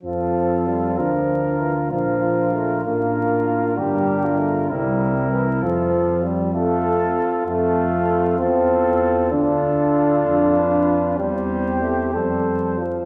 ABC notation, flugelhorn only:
X:1
M:6/8
L:1/16
Q:3/8=64
K:F
V:1 name="Flugelhorn"
F6 F6 | F6 F6 | G3 F3 E6 | F4 z2 F6 |
[K:Flyd] F6 F6 | F12 | G6 A4 z2 |]